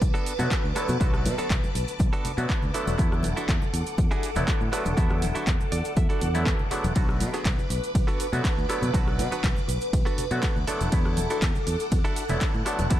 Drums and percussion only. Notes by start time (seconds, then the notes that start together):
0.02 kick, closed hi-hat, high conga, maracas, shaker
0.15 closed hi-hat, maracas
0.26 open hi-hat, shaker
0.39 closed hi-hat, high conga, low conga, maracas, shaker
0.51 kick, clap, closed hi-hat, maracas, shaker
0.65 maracas
0.76 cross-stick, open hi-hat, shaker
0.88 closed hi-hat, high conga, low conga, maracas, shaker
1.01 kick, closed hi-hat, maracas, shaker
1.14 cross-stick, maracas
1.26 open hi-hat, high conga, shaker
1.38 closed hi-hat, maracas, shaker
1.50 kick, clap, closed hi-hat, maracas, shaker
1.64 high conga, low conga, maracas, shaker
1.75 open hi-hat, shaker
1.88 closed hi-hat, maracas, shaker
1.99 kick, closed hi-hat, high conga, maracas, shaker
2.13 closed hi-hat, maracas
2.25 open hi-hat, low conga, shaker
2.38 closed hi-hat, high conga, maracas, shaker
2.49 kick, clap, open hi-hat, maracas, shaker
2.62 low conga, maracas
2.74 open hi-hat, shaker
2.87 closed hi-hat, high conga, shaker, maracas
2.98 kick, closed hi-hat, maracas, shaker
3.12 cross-stick, maracas
3.23 open hi-hat, high conga, shaker
3.37 closed hi-hat, maracas, shaker
3.48 kick, clap, closed hi-hat, maracas, shaker
3.62 high conga, low conga, shaker, maracas
3.74 open hi-hat, shaker
3.86 closed hi-hat, maracas, shaker
3.98 kick, closed hi-hat, high conga, maracas, shaker
4.11 closed hi-hat, maracas
4.23 open hi-hat, shaker
4.36 closed hi-hat, high conga, low conga, maracas, shaker
4.47 kick, clap, closed hi-hat, maracas, shaker
4.61 maracas
4.73 cross-stick, open hi-hat, shaker
4.86 closed hi-hat, high conga, low conga, maracas, shaker
4.97 kick, closed hi-hat, maracas, shaker
5.10 cross-stick, maracas
5.22 open hi-hat, high conga, shaker
5.35 closed hi-hat, maracas, shaker
5.47 kick, clap, closed hi-hat, shaker, maracas
5.60 high conga, low conga, maracas, shaker
5.72 open hi-hat, shaker
5.85 closed hi-hat, maracas, shaker
5.97 kick, closed hi-hat, high conga, maracas, shaker
6.10 closed hi-hat, maracas
6.21 open hi-hat, low conga, shaker
6.35 closed hi-hat, high conga, shaker, maracas
6.46 kick, clap, open hi-hat, maracas, shaker
6.59 low conga, maracas
6.71 open hi-hat, shaker
6.84 closed hi-hat, high conga, maracas, shaker
6.96 kick, closed hi-hat, ride, maracas, shaker
7.09 cross-stick, maracas
7.20 open hi-hat, high conga, shaker
7.34 closed hi-hat, maracas, shaker
7.45 kick, clap, closed hi-hat, ride, maracas, shaker
7.59 high conga, low conga, shaker, maracas
7.70 open hi-hat, shaker
7.84 closed hi-hat, shaker, maracas
7.95 kick, closed hi-hat, ride, high conga, maracas, shaker
8.08 closed hi-hat, maracas
8.20 open hi-hat, shaker
8.33 closed hi-hat, high conga, low conga, shaker, maracas
8.45 kick, clap, closed hi-hat, ride, maracas, shaker
8.58 maracas
8.70 cross-stick, open hi-hat, shaker
8.82 closed hi-hat, high conga, low conga, maracas, shaker
8.94 kick, closed hi-hat, ride, maracas, shaker
9.08 cross-stick, maracas
9.19 open hi-hat, high conga, shaker
9.32 closed hi-hat, maracas, shaker
9.43 kick, clap, closed hi-hat, ride, maracas, shaker
9.56 high conga, low conga, maracas, shaker
9.69 open hi-hat, shaker
9.81 closed hi-hat, maracas, shaker
9.93 kick, closed hi-hat, ride, high conga, maracas, shaker
10.06 closed hi-hat, maracas
10.18 open hi-hat, low conga, shaker
10.31 closed hi-hat, high conga, maracas, shaker
10.43 kick, clap, open hi-hat, ride, maracas, shaker
10.56 low conga, maracas
10.67 open hi-hat, shaker
10.81 closed hi-hat, high conga, shaker, maracas
10.92 kick, closed hi-hat, ride, maracas, shaker
11.05 cross-stick, maracas
11.17 open hi-hat, high conga, shaker
11.30 closed hi-hat, maracas, shaker
11.42 kick, clap, closed hi-hat, ride, maracas, shaker
11.55 high conga, low conga, maracas, shaker
11.67 open hi-hat, shaker
11.80 closed hi-hat, maracas, shaker
11.91 kick, closed hi-hat, ride, high conga, maracas, shaker
12.05 closed hi-hat, maracas
12.16 open hi-hat, shaker
12.29 closed hi-hat, high conga, low conga, maracas, shaker
12.41 kick, clap, closed hi-hat, ride, maracas, shaker
12.54 maracas
12.66 cross-stick, open hi-hat, shaker
12.79 closed hi-hat, high conga, low conga, shaker, maracas
12.90 kick, closed hi-hat, ride, maracas, shaker